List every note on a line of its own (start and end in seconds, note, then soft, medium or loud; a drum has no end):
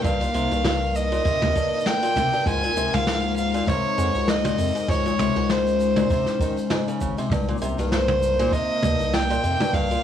0.00 0.27 C2 loud
0.00 2.42 A#3 medium
0.00 10.03 D#4 medium
0.00 4.85 A#4 medium
0.00 kick loud
0.04 0.19 G2 medium
0.04 0.97 F5 loud
0.04 shaker medium
0.21 0.29 A#2 medium
0.21 open hi-hat medium
0.21 shaker medium
0.34 0.47 C2 medium
0.34 0.50 C3 loud
0.34 shaker medium
0.51 1.20 C2 loud
0.51 1.10 G2 medium
0.51 open hi-hat medium
0.51 shaker medium
0.64 snare loud
0.64 mid tom medium
0.64 open hi-hat medium
0.64 shaker medium
0.82 open hi-hat medium
0.95 1.88 D#5 loud
0.95 open hi-hat soft
0.95 shaker medium
1.12 1.24 A#2 loud
1.12 open hi-hat medium
1.12 shaker soft
1.25 1.54 C3 medium
1.25 kick loud
1.25 open hi-hat medium
1.25 shaker medium
1.42 1.52 D#2 medium
1.42 snare soft
1.42 mid tom medium
1.55 2.01 G2 medium
1.55 kick loud
1.55 open hi-hat medium
1.55 shaker medium
1.73 open hi-hat medium
1.80 shaker medium
1.85 2.48 G5 loud
1.85 snare loud
1.85 open hi-hat medium
1.85 shaker medium
2.03 2.15 A#2 loud
2.03 shaker medium
2.16 2.32 C3 medium
2.16 kick medium
2.16 mid tom medium
2.16 shaker medium
2.33 2.45 G2 medium
2.33 open hi-hat medium
2.46 2.69 C#2 loud
2.46 2.62 G#2 medium
2.46 7.27 G#3 medium
2.46 2.95 G#5 loud
2.46 kick loud
2.46 open hi-hat medium
2.46 shaker medium
2.64 2.71 A#2 medium
2.64 shaker medium
2.76 2.89 C#2 medium
2.76 2.92 C3 loud
2.76 shaker medium
2.93 3.62 C#2 loud
2.93 3.53 G#2 medium
2.93 3.37 F5 loud
2.93 mid tom medium
2.93 open hi-hat medium
2.93 shaker medium
3.07 snare loud
3.07 open hi-hat medium
3.07 shaker medium
3.24 open hi-hat soft
3.30 open hi-hat soft
3.37 3.70 F5 loud
3.37 shaker loud
3.54 3.66 A#2 medium
3.54 open hi-hat medium
3.54 shaker medium
3.67 3.96 C3 medium
3.67 4.30 C#5 loud
3.67 kick loud
3.67 mid tom medium
3.67 open hi-hat medium
3.67 shaker medium
3.98 4.10 F2 loud
3.98 4.43 G#2 medium
3.98 open hi-hat medium
3.98 shaker loud
4.14 4.53 C#2 medium
4.14 open hi-hat medium
4.14 shaker soft
4.28 4.91 D#5 loud
4.28 snare loud
4.28 open hi-hat medium
4.28 shaker medium
4.45 4.57 A#2 loud
4.45 mid tom medium
4.45 shaker medium
4.58 4.71 F2 medium
4.58 4.74 C3 medium
4.58 shaker medium
4.63 shaker medium
4.67 shaker medium
4.72 4.87 G#2 medium
4.72 open hi-hat medium
4.72 shaker soft
4.76 shaker soft
4.76 shaker medium
4.79 shaker soft
4.86 5.12 C#2 loud
4.86 5.04 G#2 medium
4.86 7.29 C#4 loud
4.86 5.51 C#5 loud
4.86 kick loud
4.86 open hi-hat medium
4.86 shaker soft
4.91 shaker medium
5.06 5.13 A#2 medium
5.06 shaker medium
5.19 5.31 C#2 medium
5.19 5.34 C3 loud
5.19 mid tom medium
5.19 shaker medium
5.36 6.04 C#2 loud
5.36 5.95 G#2 medium
5.36 open hi-hat medium
5.49 6.71 C5 medium
5.49 snare medium
5.49 open hi-hat medium
5.49 shaker medium
5.66 open hi-hat soft
5.66 shaker medium
5.79 open hi-hat medium
5.79 shaker medium
5.96 6.09 A#2 loud
5.96 mid tom medium
5.96 open hi-hat medium
5.96 shaker medium
6.10 6.25 C3 medium
6.10 kick loud
6.10 open hi-hat medium
6.10 shaker medium
6.26 snare soft
6.26 shaker soft
6.40 6.56 D#3 medium
6.40 kick loud
6.40 open hi-hat medium
6.40 shaker medium
6.57 open hi-hat medium
6.57 shaker soft
6.70 6.86 G#2 medium
6.70 snare loud
6.70 mid tom medium
6.70 open hi-hat medium
6.70 shaker medium
6.88 7.00 C#3 medium
6.88 shaker soft
7.01 7.13 G#1 medium
7.01 7.16 C#3 medium
7.01 kick medium
7.01 shaker medium
7.18 7.31 C3 medium
7.18 open hi-hat medium
7.18 shaker medium
7.30 7.54 C2 loud
7.30 7.47 G2 medium
7.30 10.03 A#3 medium
7.30 10.03 A#4 loud
7.30 kick loud
7.30 mid tom medium
7.30 open hi-hat medium
7.30 shaker medium
7.49 7.56 A#2 medium
7.49 shaker soft
7.57 shaker soft
7.61 7.74 C2 medium
7.61 7.77 C3 loud
7.61 shaker medium
7.68 shaker soft
7.78 8.47 C2 loud
7.78 8.38 G2 medium
7.78 open hi-hat medium
7.78 shaker medium
7.92 8.54 C5 medium
7.92 snare medium
7.92 open hi-hat medium
7.92 shaker medium
8.08 mid tom medium
8.08 open hi-hat medium
8.22 open hi-hat soft
8.22 shaker loud
8.32 open hi-hat soft
8.39 8.51 A#2 loud
8.39 open hi-hat medium
8.39 shaker soft
8.42 open hi-hat soft
8.45 open hi-hat soft
8.49 kick loud
8.49 open hi-hat soft
8.52 8.82 C3 medium
8.52 9.15 D#5 loud
8.52 open hi-hat medium
8.52 open hi-hat soft
8.52 shaker medium
8.56 open hi-hat soft
8.61 open hi-hat soft
8.65 open hi-hat soft
8.83 8.95 D#2 loud
8.83 9.28 G2 medium
8.83 mid tom medium
8.83 open hi-hat medium
8.83 shaker loud
8.99 9.38 C2 medium
8.99 open hi-hat medium
8.99 shaker soft
9.13 9.75 G5 loud
9.13 snare loud
9.13 open hi-hat medium
9.13 shaker medium
9.30 9.42 A#2 loud
9.30 shaker soft
9.43 9.56 F2 medium
9.43 9.60 C3 medium
9.43 shaker medium
9.60 9.72 G2 medium
9.60 mid tom medium
9.60 open hi-hat medium
9.60 shaker soft
9.73 9.97 C2 loud
9.73 9.89 G2 medium
9.73 10.03 F5 loud
9.73 kick loud
9.73 open hi-hat medium
9.73 shaker medium
9.91 9.98 A#2 medium
9.91 shaker soft